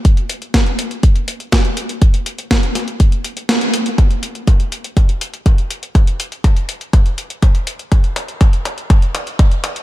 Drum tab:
HH |xxxxxxxxxxxxxxxx|xxxxxxxxxxxxxxxx|xxxxxxxxxxxxxxxx|xxxxxxxxxxxxxxxx|
SD |----o-------o---|----o-o-----o---|----------------|----------------|
T2 |----------------|----------------|o---o---o---o---|o---o---o---o---|
BD |o---o---o---o---|o---o---o-------|o---o---o---o---|o---o---o---o---|

HH |xxxxxxxxxxxxxxxx|
SD |----------------|
T2 |o-o-o-o-o-o-o-o-|
BD |o---o---o---o---|